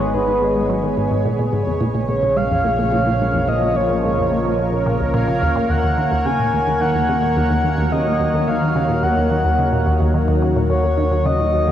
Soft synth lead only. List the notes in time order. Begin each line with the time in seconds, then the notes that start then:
Already playing: C#5
0.14 B4
2.09 C#5
2.37 F5
2.64 F5
3.48 D#5
3.76 C#5
5.15 F5
5.70 F#5
6.26 G#5
6.81 F#5
7.37 F#5
7.92 D#5
8.47 F5
9.03 F#5
10.70 C#5
11.26 D#5